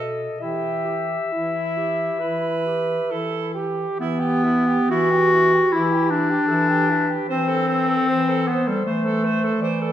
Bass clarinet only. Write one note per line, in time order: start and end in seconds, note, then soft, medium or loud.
0.00 0.30 B2 soft
0.40 1.20 E3 soft
1.30 2.11 E3 soft
2.21 3.00 E3 soft
3.11 3.89 E3 soft
3.99 4.80 E3 medium
4.90 5.62 E3 medium
5.72 6.40 E3 medium
6.50 7.20 E3 medium
7.30 7.99 E3 medium
8.09 8.76 E3 medium
8.85 9.52 E3 medium
9.60 9.92 E3 medium